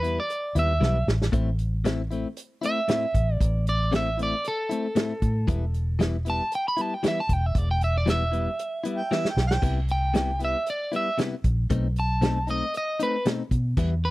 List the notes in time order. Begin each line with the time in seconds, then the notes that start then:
Already playing: E2 B4
0.03 G3 B3 E4, closed hi-hat
0.20 D5
0.30 closed hi-hat
0.55 D#2 G3 B3 E4 E5, closed hi-hat
0.80 B1 E3 G3 B3 E4, snare
1.07 A1, snare
1.22 snare
1.32 A1 A2 A3 C4 E4, kick, closed hi-hat
1.59 closed hi-hat
1.85 A2 A3 C4 E4, snare, closed hi-hat
2.11 A3 C4 E4, closed hi-hat
2.37 closed hi-hat
2.62 A3 C4 E4, closed hi-hat
2.66 E5
2.88 A2 A3 C4 E4, snare, closed hi-hat
3.15 A1, kick, closed hi-hat
3.34 D5
3.41 A1, kick, closed hi-hat
3.67 D5, closed hi-hat
3.92 A2 A3 C4 E4, snare, closed hi-hat
3.96 E5
4.17 A3 C4 E4, closed hi-hat
4.23 D5
4.44 A4, closed hi-hat
4.69 A3 C4 E4, closed hi-hat
4.95 A2 A3 C4 E4, snare, closed hi-hat
5.22 A2, kick, closed hi-hat
5.48 E1 E3 G3 B3 E4, kick, closed hi-hat
5.74 closed hi-hat
5.99 E3 G3 B3 E4, snare, closed hi-hat
6.25 G3 B3 E4, closed hi-hat
6.30 A5
6.52 G5, closed hi-hat
6.68 B5
6.77 G3 B3 E4, closed hi-hat
6.81 A5
6.94 G5
7.03 E3 G3 B3 E4, snare, closed hi-hat
7.08 E5
7.20 A5
7.29 E1 G5, kick, closed hi-hat
7.46 E5
7.55 E1 D5, kick, closed hi-hat
7.71 G5
7.81 E5, closed hi-hat
7.98 D5
8.06 E3 G3 B3 E4 E5, snare, closed hi-hat
8.32 G3 B3 E4, closed hi-hat
8.59 closed hi-hat
8.84 G3 B3 E4, closed hi-hat
8.97 G5
9.11 E3 G3 B3 E4 E5, snare
9.25 snare
9.30 G5
9.37 B1, snare
9.47 G5, snare
9.62 C2 C3 G3 B3 E4, kick, closed hi-hat, crash
9.88 G5, closed hi-hat
10.14 C3 G3 B3 E4, snare, closed hi-hat
10.40 G3 B3 E4, closed hi-hat
10.45 E5
10.66 D5, closed hi-hat
10.92 G3 B3 E4, closed hi-hat
10.96 E5
11.18 C3 G3 B3 E4, snare, closed hi-hat
11.44 A#1, kick, closed hi-hat
11.70 B1 B2 A3 C4 D#4, kick, closed hi-hat
11.96 A5, closed hi-hat
12.21 B2 A3 C4 D#4, snare, closed hi-hat
12.47 A3 C4 D#4 D#5, closed hi-hat
12.74 D#5, closed hi-hat
13.00 A3 C4 D#4 B4, closed hi-hat
13.25 B2 A3 C4 D#4, snare, closed hi-hat
13.51 B2, kick, closed hi-hat
13.77 E2 E3 G3 B3 E4, kick, closed hi-hat, crash
14.05 B4